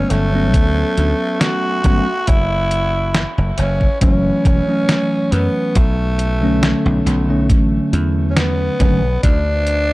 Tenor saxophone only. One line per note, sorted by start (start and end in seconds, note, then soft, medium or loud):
0.00 0.12 C#4 loud
0.10 1.42 A3 loud
1.40 2.29 F#4 loud
2.28 3.32 E4 loud
3.58 3.99 C#4 medium
4.02 5.34 C#4 loud
5.32 5.77 B3 medium
5.76 7.06 A3 medium
8.30 8.39 C#4 medium
8.37 9.22 B3 medium
9.23 9.93 D4 loud